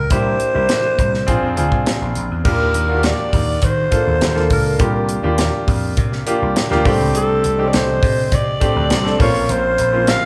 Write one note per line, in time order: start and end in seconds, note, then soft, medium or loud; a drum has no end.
0.00 0.11 A#3 medium
0.00 0.11 D4 medium
0.00 0.13 F4 medium
0.00 0.12 G4 medium
0.00 0.11 A#4 medium
0.00 0.12 A#4 medium
0.10 0.35 C2 loud
0.10 0.50 A#3 medium
0.10 0.50 D4 medium
0.10 0.50 E4 medium
0.10 0.50 G4 medium
0.10 1.83 C5 loud
0.10 kick loud
0.10 closed hi-hat medium
0.40 closed hi-hat medium
0.54 0.67 C2 medium
0.54 1.28 A#3 medium
0.54 1.25 D4 medium
0.54 1.28 E4 medium
0.54 1.28 G4 medium
0.69 snare loud
0.69 closed hi-hat medium
0.99 1.23 C2 medium
0.99 kick medium
0.99 closed hi-hat medium
1.14 snare soft
1.27 1.40 A#1 medium
1.27 1.53 C4 medium
1.27 1.53 D4 medium
1.27 1.54 F4 medium
1.27 1.54 G#4 medium
1.27 kick medium
1.27 closed hi-hat medium
1.43 1.55 F2 medium
1.56 1.72 D2 medium
1.56 2.35 C4 medium
1.56 2.35 D4 medium
1.56 2.36 F4 medium
1.56 2.36 G#4 medium
1.56 closed hi-hat medium
1.72 1.84 C2 medium
1.72 kick medium
1.86 snare loud
1.86 closed hi-hat medium
2.02 2.14 A#1 medium
2.15 2.29 A#1 medium
2.15 closed hi-hat medium
2.31 2.43 E2 medium
2.44 2.70 D#2 loud
2.44 2.84 A#3 medium
2.44 2.84 D4 medium
2.44 2.84 F4 medium
2.44 2.84 G4 medium
2.44 3.07 A#4 medium
2.44 kick loud
2.44 crash medium
2.74 3.11 D#2 loud
2.74 closed hi-hat medium
2.88 3.80 A#3 medium
2.88 3.80 D4 medium
2.88 3.81 F4 medium
2.88 2.96 F#4 medium
2.96 3.84 G4 medium
3.03 3.66 D5 loud
3.03 snare loud
3.03 closed hi-hat medium
3.33 3.58 D#2 medium
3.33 kick medium
3.33 open hi-hat medium
3.62 3.87 D#3 medium
3.62 4.51 C5 loud
3.62 kick medium
3.62 closed hi-hat medium
3.91 4.30 A#3 medium
3.91 4.31 D4 medium
3.91 4.31 F4 medium
3.91 4.31 A4 medium
3.91 kick medium
3.91 closed hi-hat medium
4.07 4.19 D#2 medium
4.21 4.51 D#2 medium
4.21 snare loud
4.21 closed hi-hat medium
4.35 4.75 A#3 medium
4.35 4.75 D4 medium
4.35 4.75 F4 medium
4.35 4.75 A4 medium
4.35 snare soft
4.50 4.75 C#2 medium
4.50 5.06 A#4 medium
4.50 kick medium
4.50 open hi-hat medium
4.79 5.17 C2 medium
4.79 5.19 A#3 medium
4.79 5.19 D4 medium
4.79 5.19 F4 medium
4.79 5.19 G4 medium
4.79 kick loud
4.79 closed hi-hat medium
5.09 closed hi-hat medium
5.23 5.49 D#2 medium
5.23 6.15 A#3 medium
5.23 6.15 D4 medium
5.23 6.15 F4 medium
5.23 6.16 G4 medium
5.38 snare loud
5.38 closed hi-hat loud
5.68 5.92 F2 medium
5.68 kick medium
5.68 open hi-hat medium
5.97 6.22 C3 medium
5.97 kick medium
5.97 closed hi-hat medium
6.12 snare soft
6.26 6.66 A#3 medium
6.26 6.66 D4 medium
6.26 6.66 F4 medium
6.26 6.66 G4 medium
6.26 closed hi-hat medium
6.42 6.54 C2 medium
6.56 snare loud
6.56 closed hi-hat medium
6.70 6.83 D2 medium
6.70 6.85 A#3 medium
6.70 6.84 D4 medium
6.70 6.86 F4 medium
6.70 6.85 G4 medium
6.70 snare soft
6.85 6.98 C2 medium
6.85 7.50 A3 medium
6.85 7.50 C4 medium
6.85 7.51 D4 medium
6.85 7.51 G4 medium
6.85 kick loud
6.85 open hi-hat medium
7.01 7.13 C#2 medium
7.15 7.39 C2 loud
7.15 7.70 A4 medium
7.15 closed hi-hat medium
7.44 7.69 C2 loud
7.44 closed hi-hat medium
7.58 7.65 G#3 soft
7.58 8.50 C4 medium
7.58 8.50 D4 medium
7.58 8.50 G4 medium
7.64 8.53 A3 medium
7.64 7.76 D5 medium
7.73 7.98 C2 medium
7.73 8.36 C5 loud
7.73 snare loud
7.73 closed hi-hat medium
8.03 8.27 C3 medium
8.03 kick medium
8.03 open hi-hat medium
8.32 8.57 C3 medium
8.32 9.21 D5 loud
8.32 kick medium
8.32 closed hi-hat medium
8.60 9.00 A3 medium
8.60 9.00 C4 medium
8.60 9.00 D4 medium
8.60 9.00 G4 medium
8.60 kick medium
8.60 closed hi-hat medium
8.76 8.88 D2 medium
8.90 9.15 C2 medium
8.90 snare loud
8.90 closed hi-hat medium
9.04 9.19 A3 medium
9.04 9.17 C4 medium
9.04 9.20 D4 medium
9.04 9.20 A4 medium
9.04 snare soft
9.19 9.44 A#1 medium
9.19 9.85 A#3 medium
9.19 9.85 C4 medium
9.19 9.85 C#4 medium
9.19 9.85 F4 medium
9.19 9.52 C#5 loud
9.19 kick loud
9.19 open hi-hat medium
9.49 9.74 A#1 loud
9.49 10.11 C5 loud
9.49 closed hi-hat medium
9.78 10.15 A#1 loud
9.78 closed hi-hat medium
9.92 10.25 A#3 medium
9.92 10.25 C4 medium
9.92 10.25 C#4 medium
9.92 10.25 F4 medium
10.07 10.25 F5 loud
10.07 snare loud
10.07 closed hi-hat medium